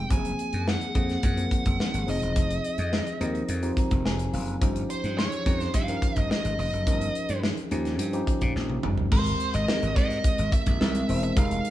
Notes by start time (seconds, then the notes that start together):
Already playing: D#3 G#3 C4 G4 G#4
0.10 F#1 F3 A#3 C4 G4 G#5, kick, closed hi-hat
0.17 G#4
0.25 closed hi-hat
0.39 closed hi-hat
0.53 F#2, closed hi-hat
0.68 F#5, snare
0.81 closed hi-hat
0.95 F2 F3 A#3 C4 G#4, kick, closed hi-hat
1.09 snare, closed hi-hat
1.23 F#2 F#5, kick, closed hi-hat
1.36 F3 A#3 C4 A#4, closed hi-hat
1.51 kick, closed hi-hat
1.66 F#1, kick, closed hi-hat
1.80 snare
1.94 G#1, closed hi-hat
2.07 F1 F3 C4 D#4 G#4 D#5, open hi-hat
2.22 E1, closed hi-hat
2.36 F1, kick, closed hi-hat
2.50 closed hi-hat
2.64 closed hi-hat
2.78 F2, closed hi-hat
2.93 snare
3.07 closed hi-hat
3.20 D#2 F3 C4 D#4 A#4, closed hi-hat
3.35 closed hi-hat
3.49 F2, closed hi-hat
3.62 F3 C4 D#4 G4, closed hi-hat
3.77 A#5, kick, closed hi-hat
3.91 F1, kick, closed hi-hat
4.05 F1 G#5, snare
4.19 closed hi-hat
4.33 F#1 F5, open hi-hat
4.48 closed hi-hat
4.61 G1 F3 C#4 D#4 G4, kick, closed hi-hat
4.76 closed hi-hat
4.90 C5, closed hi-hat
5.04 G2, closed hi-hat
5.18 C#5, snare
5.32 closed hi-hat
5.45 F2 F3 C#4 D#4 G4, kick, snare, closed hi-hat
5.60 C5, snare, closed hi-hat
5.74 G2 F5, kick, closed hi-hat
5.88 F3 C#4 D#4 A#4, closed hi-hat
6.02 kick, closed hi-hat
6.16 G1 D#5, kick, closed hi-hat
6.31 D#5, snare
6.45 G#1, closed hi-hat
6.59 F1 D#5, open hi-hat
6.73 F#1, closed hi-hat
6.87 G1 F3 C#4 D#4 A#4, kick, closed hi-hat
7.01 closed hi-hat
7.15 closed hi-hat
7.29 G2, closed hi-hat
7.43 snare
7.57 closed hi-hat
7.71 D#2 F3 C#4 D#4 G4, closed hi-hat
7.85 snare, closed hi-hat
7.99 G2, closed hi-hat
8.13 F3 C#4 D#4 G4, closed hi-hat
8.27 kick, closed hi-hat
8.41 A#2, kick, closed hi-hat
8.56 A#1, snare
8.70 high tom
8.83 G1, mid tom
8.97 floor tom
9.11 G#1 G#3 C4 G4 A4 C5, kick, crash
9.19 A#4
9.26 closed hi-hat
9.40 closed hi-hat
9.54 G#1 D#5, closed hi-hat
9.68 G#3 C4 G4 A#4, snare
9.82 G#1, closed hi-hat
9.96 G#2 D#5, kick, snare, closed hi-hat
10.10 snare, closed hi-hat
10.24 kick, closed hi-hat
10.38 G#1, closed hi-hat
10.52 E5, kick, closed hi-hat
10.66 A#1, kick, closed hi-hat
10.81 C2 G#3 C4 E4 A#4, snare
10.95 closed hi-hat
11.08 E1 G#3 C4 E4 C5, open hi-hat
11.23 E5, closed hi-hat
11.36 F1 G#3 D#4 G4 A#4 F5, kick, closed hi-hat
11.51 closed hi-hat
11.65 closed hi-hat